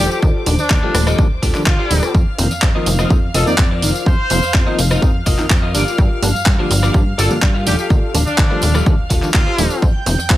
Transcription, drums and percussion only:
0.11 tambourine soft
0.22 kick loud
0.22 tambourine soft
0.46 open hi-hat loud
0.46 tambourine medium
0.59 tambourine soft
0.70 kick loud
0.70 clap loud
0.70 tambourine soft
0.95 cross-stick medium
0.95 open hi-hat loud
0.95 tambourine medium
1.07 cross-stick medium
1.07 tambourine medium
1.19 kick loud
1.19 tambourine soft
1.43 kick medium
1.43 open hi-hat loud
1.43 tambourine medium
1.54 clap soft
1.54 tambourine soft
1.66 kick loud
1.66 clap loud
1.66 tambourine soft
1.91 open hi-hat loud
1.91 tambourine medium
2.03 cross-stick medium
2.03 tambourine soft
2.15 kick loud
2.15 tambourine soft
2.38 open hi-hat loud
2.38 tambourine medium
2.51 tambourine medium
2.62 kick loud
2.62 clap loud
2.86 open hi-hat loud
2.86 tambourine medium
2.99 cross-stick medium
2.99 tambourine soft
3.10 kick loud
3.10 tambourine soft
3.34 open hi-hat loud
3.34 tambourine medium
3.47 tambourine soft
3.58 kick loud
3.58 clap loud
3.82 open hi-hat loud
3.82 tambourine medium
3.96 tambourine medium
4.06 kick loud
4.06 tambourine soft
4.30 open hi-hat loud
4.30 tambourine medium
4.43 tambourine medium
4.54 kick loud
4.54 clap loud
4.54 tambourine soft
4.79 open hi-hat loud
4.79 tambourine loud
4.91 cross-stick medium
4.91 tambourine medium
5.02 kick loud
5.02 tambourine soft
5.26 kick medium
5.26 open hi-hat loud
5.26 tambourine loud
5.39 clap soft
5.39 tambourine medium
5.50 kick loud
5.50 clap loud
5.50 tambourine soft
5.74 open hi-hat loud
5.74 tambourine medium
5.88 tambourine medium
5.98 kick loud
5.98 tambourine soft
6.23 open hi-hat loud
6.23 tambourine medium
6.36 tambourine medium
6.46 kick loud
6.46 clap loud
6.71 open hi-hat loud
6.71 tambourine medium
6.83 cross-stick medium
6.83 tambourine medium
6.94 kick loud
6.94 tambourine soft
7.19 open hi-hat loud
7.19 tambourine loud
7.30 tambourine medium
7.42 kick loud
7.42 clap loud
7.42 tambourine soft
7.66 open hi-hat loud
7.66 tambourine loud
7.79 tambourine medium
7.90 kick loud
7.90 tambourine soft
8.15 open hi-hat loud
8.15 tambourine loud
8.27 tambourine medium
8.38 kick loud
8.38 clap loud
8.62 open hi-hat loud
8.62 tambourine medium
8.75 cross-stick medium
8.75 tambourine medium
8.86 kick loud
8.86 tambourine soft
9.10 kick medium
9.10 open hi-hat loud
9.10 tambourine loud
9.22 clap soft
9.22 tambourine soft
9.34 kick loud
9.34 clap loud
9.34 tambourine soft
9.58 open hi-hat loud
9.58 tambourine loud
9.70 tambourine medium
9.82 kick loud
9.82 tambourine soft
10.06 open hi-hat loud
10.06 tambourine medium
10.20 tambourine medium
10.30 kick loud
10.30 clap loud
10.30 tambourine soft

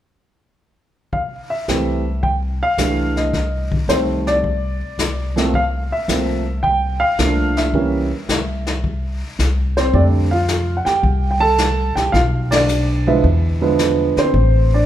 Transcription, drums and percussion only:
1.13 brush sweep soft
1.13 kick soft
1.68 snare soft
1.68 hi-hat pedal soft
2.23 brush sweep soft
2.23 kick soft
2.78 snare soft
2.78 hi-hat pedal soft
3.17 snare soft
3.33 brush sweep soft
3.33 kick soft
3.33 snare soft
3.72 kick soft
3.89 snare soft
3.89 hi-hat pedal soft
4.27 snare soft
4.44 brush sweep soft
4.44 kick soft
4.99 snare soft
4.99 hi-hat pedal medium
5.37 snare soft
5.54 brush sweep soft
5.54 kick soft
6.09 snare soft
6.09 hi-hat pedal medium
6.64 brush sweep soft
6.64 kick soft
7.19 snare soft
7.19 hi-hat pedal soft
7.57 snare soft
7.73 brush sweep soft
7.73 kick soft
8.29 snare soft
8.29 hi-hat pedal medium
8.67 snare soft
8.84 brush sweep soft
8.84 kick soft
9.39 snare soft
9.39 hi-hat pedal soft
9.77 snare soft
9.93 brush sweep soft
9.93 kick soft
10.48 snare soft
10.48 hi-hat pedal soft
10.86 snare soft
11.03 brush sweep soft
11.03 kick soft
11.58 snare soft
11.58 hi-hat pedal soft
11.97 snare soft
12.14 brush sweep soft
12.14 kick soft
12.14 snare soft
12.52 snare medium
12.52 ride soft
12.69 hi-hat pedal soft
13.24 brush sweep soft
13.24 kick soft
13.79 snare soft
13.79 hi-hat pedal medium
14.17 snare soft
14.34 brush sweep soft
14.34 kick soft

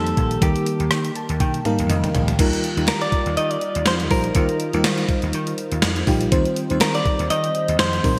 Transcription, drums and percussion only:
0.07 closed hi-hat medium
0.17 kick medium
0.17 closed hi-hat medium
0.31 closed hi-hat medium
0.42 kick loud
0.42 closed hi-hat medium
0.56 closed hi-hat medium
0.66 closed hi-hat medium
0.80 closed hi-hat soft
0.91 cross-stick loud
0.91 closed hi-hat medium
1.05 closed hi-hat soft
1.16 closed hi-hat soft
1.29 closed hi-hat soft
1.40 kick medium
1.40 closed hi-hat medium
1.40 high tom soft
1.54 closed hi-hat medium
1.65 closed hi-hat medium
1.65 mid tom medium
1.79 closed hi-hat medium
1.90 closed hi-hat medium
1.90 mid tom medium
2.04 closed hi-hat soft
2.04 mid tom medium
2.15 closed hi-hat medium
2.15 floor tom medium
2.28 closed hi-hat medium
2.28 floor tom medium
2.39 kick loud
2.39 closed hi-hat medium
2.39 crash medium
2.53 closed hi-hat medium
2.64 closed hi-hat medium
2.77 closed hi-hat soft
2.87 snare loud
2.87 clap medium
2.87 closed hi-hat medium
3.01 closed hi-hat medium
3.12 kick medium
3.12 closed hi-hat medium
3.26 closed hi-hat soft
3.37 closed hi-hat medium
3.51 closed hi-hat medium
3.61 closed hi-hat medium
3.75 closed hi-hat medium
3.86 snare loud
3.86 clap medium
3.86 closed hi-hat medium
4.00 closed hi-hat medium
4.11 kick medium
4.11 open hi-hat medium
4.24 closed hi-hat medium
4.35 kick loud
4.35 closed hi-hat loud
4.49 closed hi-hat medium
4.60 closed hi-hat medium
4.73 closed hi-hat soft
4.84 snare loud
4.84 clap medium
4.84 closed hi-hat medium
4.98 closed hi-hat medium
5.09 kick medium
5.09 closed hi-hat soft
5.22 closed hi-hat soft
5.33 closed hi-hat medium
5.47 closed hi-hat medium
5.58 closed hi-hat medium
5.72 closed hi-hat medium
5.82 snare loud
5.82 clap medium
5.82 closed hi-hat medium
5.96 closed hi-hat medium
6.07 kick medium
6.07 open hi-hat medium
6.21 closed hi-hat medium
6.32 kick loud
6.32 closed hi-hat loud
6.45 closed hi-hat medium
6.56 closed hi-hat medium
6.70 closed hi-hat soft
6.81 snare loud
6.81 clap medium
6.81 closed hi-hat medium
6.95 closed hi-hat medium
7.05 kick medium
7.05 closed hi-hat soft
7.19 closed hi-hat soft
7.30 closed hi-hat medium
7.44 closed hi-hat medium
7.55 closed hi-hat medium
7.68 closed hi-hat medium
7.79 snare loud
7.79 clap medium
7.79 closed hi-hat medium
7.93 closed hi-hat medium
8.04 kick medium
8.04 open hi-hat medium

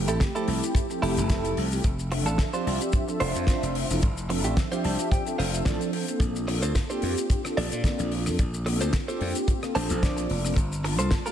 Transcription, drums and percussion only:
0.08 closed hi-hat medium
0.08 shaker medium
0.20 kick loud
0.20 snare loud
0.20 closed hi-hat medium
0.20 shaker medium
0.36 shaker soft
0.48 open hi-hat medium
0.63 closed hi-hat medium
0.63 shaker medium
0.75 kick loud
0.75 closed hi-hat medium
0.75 shaker medium
0.90 shaker soft
1.03 open hi-hat loud
1.17 closed hi-hat soft
1.17 shaker medium
1.30 kick loud
1.30 snare loud
1.30 closed hi-hat medium
1.30 shaker medium
1.45 closed hi-hat medium
1.45 shaker soft
1.57 open hi-hat loud
1.72 shaker medium
1.84 kick loud
1.84 closed hi-hat medium
1.84 shaker medium
1.99 shaker soft
2.11 open hi-hat loud
2.26 closed hi-hat medium
2.26 shaker medium
2.38 kick medium
2.38 snare loud
2.38 closed hi-hat medium
2.38 shaker medium
2.54 shaker soft
2.67 open hi-hat medium
2.81 closed hi-hat medium
2.81 shaker medium
2.92 kick loud
2.92 closed hi-hat medium
2.92 shaker medium
3.08 shaker soft
3.20 open hi-hat loud
3.35 closed hi-hat soft
3.35 shaker medium
3.47 kick loud
3.47 snare loud
3.47 closed hi-hat medium
3.47 shaker medium
3.63 closed hi-hat medium
3.63 shaker soft
3.75 open hi-hat loud
3.90 shaker medium
4.02 kick loud
4.02 closed hi-hat medium
4.02 shaker medium
4.17 shaker soft
4.30 open hi-hat loud
4.44 closed hi-hat medium
4.44 shaker medium
4.57 kick loud
4.57 snare loud
4.57 closed hi-hat medium
4.57 shaker medium
4.72 closed hi-hat soft
4.72 shaker medium
4.84 open hi-hat medium
4.99 closed hi-hat medium
4.99 shaker medium
5.12 kick loud
5.12 closed hi-hat medium
5.12 shaker medium
5.27 closed hi-hat soft
5.27 shaker soft
5.40 open hi-hat loud
5.54 closed hi-hat medium
5.54 shaker medium
5.65 kick loud
5.65 snare loud
5.65 closed hi-hat medium
5.65 shaker medium
5.81 closed hi-hat soft
5.81 shaker soft
5.93 open hi-hat loud
6.08 closed hi-hat soft
6.08 shaker medium
6.20 kick loud
6.20 closed hi-hat medium
6.20 shaker medium
6.36 shaker medium
6.48 cross-stick medium
6.48 open hi-hat loud
6.63 closed hi-hat medium
6.63 shaker medium
6.75 kick loud
6.75 snare loud
6.75 closed hi-hat medium
6.75 shaker medium
6.90 shaker soft
7.02 open hi-hat medium
7.18 closed hi-hat medium
7.18 shaker medium
7.30 kick loud
7.30 closed hi-hat medium
7.30 shaker medium
7.45 cross-stick medium
7.45 shaker medium
7.57 open hi-hat medium
7.72 closed hi-hat medium
7.72 shaker medium
7.84 kick loud
7.84 snare loud
7.84 closed hi-hat medium
7.84 shaker medium
7.99 closed hi-hat soft
7.99 shaker soft
8.12 open hi-hat medium
8.26 cross-stick medium
8.26 shaker medium
8.39 kick loud
8.39 closed hi-hat medium
8.39 shaker medium
8.54 shaker medium
8.66 cross-stick medium
8.66 open hi-hat loud
8.81 closed hi-hat medium
8.81 shaker medium
8.93 kick loud
8.93 snare loud
8.93 closed hi-hat medium
8.93 shaker medium
9.09 shaker soft
9.21 open hi-hat medium
9.35 closed hi-hat medium
9.35 shaker medium
9.48 kick loud
9.48 closed hi-hat medium
9.48 shaker medium
9.63 cross-stick medium
9.63 shaker soft
9.75 open hi-hat medium
9.90 closed hi-hat medium
9.90 shaker medium
10.03 kick loud
10.03 snare loud
10.03 closed hi-hat medium
10.03 shaker medium
10.17 closed hi-hat medium
10.17 shaker medium
10.30 open hi-hat medium
10.45 cross-stick medium
10.45 shaker medium
10.56 kick loud
10.56 closed hi-hat medium
10.56 shaker medium
10.72 shaker medium
10.85 cross-stick medium
10.85 open hi-hat medium
10.99 closed hi-hat medium
10.99 shaker medium
11.11 kick loud
11.11 snare loud
11.11 closed hi-hat medium
11.11 shaker medium
11.26 shaker medium

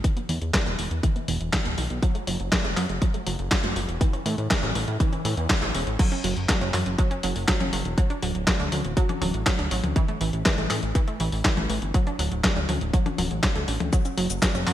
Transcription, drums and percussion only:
0.04 kick loud
0.04 closed hi-hat medium
0.17 closed hi-hat soft
0.29 open hi-hat loud
0.42 closed hi-hat soft
0.54 kick loud
0.54 snare loud
0.54 clap medium
0.54 closed hi-hat medium
0.66 closed hi-hat soft
0.79 open hi-hat loud
0.91 closed hi-hat soft
1.03 kick loud
1.03 closed hi-hat medium
1.16 closed hi-hat soft
1.28 open hi-hat loud
1.41 closed hi-hat soft
1.53 kick loud
1.53 snare loud
1.53 clap medium
1.53 closed hi-hat medium
1.65 closed hi-hat soft
1.78 open hi-hat loud
1.90 closed hi-hat soft
2.03 kick loud
2.03 closed hi-hat medium
2.15 closed hi-hat soft
2.27 open hi-hat loud
2.40 closed hi-hat soft
2.52 kick loud
2.52 snare loud
2.52 clap medium
2.52 closed hi-hat medium
2.65 closed hi-hat soft
2.77 clap medium
2.77 open hi-hat medium
2.89 closed hi-hat soft
3.02 kick loud
3.02 closed hi-hat medium
3.14 closed hi-hat soft
3.27 open hi-hat loud
3.39 closed hi-hat soft
3.51 kick loud
3.51 snare loud
3.51 clap medium
3.51 closed hi-hat medium
3.64 closed hi-hat soft
3.76 open hi-hat loud
3.89 closed hi-hat soft
4.01 kick loud
4.01 closed hi-hat medium
4.13 closed hi-hat soft
4.26 open hi-hat loud
4.38 closed hi-hat soft
4.51 kick loud
4.51 snare loud
4.51 clap medium
4.51 closed hi-hat medium
4.63 closed hi-hat soft
4.75 open hi-hat loud
4.88 closed hi-hat soft
5.00 kick loud
5.00 closed hi-hat medium
5.13 closed hi-hat soft
5.25 open hi-hat loud
5.37 closed hi-hat soft
5.50 kick loud
5.50 snare loud
5.50 clap medium
5.50 closed hi-hat medium
5.62 closed hi-hat soft
5.75 open hi-hat loud
5.87 closed hi-hat soft
5.99 kick loud
5.99 closed hi-hat loud
5.99 crash loud
6.12 closed hi-hat soft
6.24 open hi-hat loud
6.37 closed hi-hat soft
6.49 kick loud
6.49 snare loud
6.49 clap medium
6.49 closed hi-hat loud
6.61 closed hi-hat soft
6.74 clap medium
6.74 open hi-hat loud
6.74 high tom medium
6.86 closed hi-hat soft
6.98 kick loud
6.98 closed hi-hat medium
7.11 closed hi-hat soft
7.23 open hi-hat loud
7.36 open hi-hat medium
7.48 kick loud
7.48 snare loud
7.48 clap loud
7.48 closed hi-hat loud
7.61 closed hi-hat soft
7.61 high tom medium
7.73 open hi-hat loud
7.85 closed hi-hat soft
7.98 kick loud
7.98 closed hi-hat loud
8.10 closed hi-hat soft
8.22 open hi-hat loud
8.35 closed hi-hat soft
8.47 kick loud
8.47 snare loud
8.47 clap loud
8.47 closed hi-hat medium
8.60 closed hi-hat soft
8.72 open hi-hat loud
8.72 high tom medium
8.84 closed hi-hat soft
8.97 kick loud
8.97 closed hi-hat medium
9.09 closed hi-hat soft
9.09 high tom medium
9.22 open hi-hat loud
9.22 high tom medium
9.34 closed hi-hat soft
9.46 kick loud
9.46 snare loud
9.46 clap loud
9.46 closed hi-hat loud
9.59 closed hi-hat soft
9.71 open hi-hat loud
9.84 closed hi-hat soft
9.84 high tom medium
9.96 kick loud
9.96 closed hi-hat medium
10.08 closed hi-hat soft
10.21 open hi-hat loud
10.33 closed hi-hat soft
10.46 kick loud
10.46 snare loud
10.46 clap medium
10.46 closed hi-hat medium
10.58 closed hi-hat soft
10.70 clap medium
10.70 open hi-hat loud
10.70 high tom medium
10.83 closed hi-hat soft
10.95 kick loud
10.95 closed hi-hat medium
11.08 closed hi-hat soft
11.20 open hi-hat loud
11.32 open hi-hat medium
11.45 kick loud
11.45 snare loud
11.45 clap medium
11.45 closed hi-hat medium
11.57 closed hi-hat soft
11.57 high tom medium
11.70 open hi-hat loud
11.82 closed hi-hat soft
11.94 kick loud
11.94 closed hi-hat medium
12.07 closed hi-hat soft
12.19 open hi-hat loud
12.32 closed hi-hat soft
12.44 kick loud
12.44 snare loud
12.44 clap medium
12.44 closed hi-hat medium
12.56 closed hi-hat soft
12.69 open hi-hat loud
12.69 high tom medium
12.81 closed hi-hat soft
12.94 kick loud
12.94 closed hi-hat medium
13.06 closed hi-hat soft
13.06 high tom medium
13.18 open hi-hat loud
13.18 high tom medium
13.31 closed hi-hat soft
13.43 kick loud
13.43 snare loud
13.43 clap medium
13.43 closed hi-hat medium
13.56 closed hi-hat soft
13.68 open hi-hat loud
13.80 closed hi-hat soft
13.80 high tom medium
13.93 kick loud
13.93 closed hi-hat medium
13.93 cabasa medium
14.05 closed hi-hat soft
14.05 cabasa soft
14.18 open hi-hat loud
14.30 closed hi-hat soft
14.30 cabasa medium
14.42 kick loud
14.42 snare loud
14.42 clap medium
14.42 closed hi-hat medium
14.42 cabasa medium
14.55 closed hi-hat soft
14.55 cabasa soft
14.67 clap medium
14.67 open hi-hat loud
14.67 high tom medium

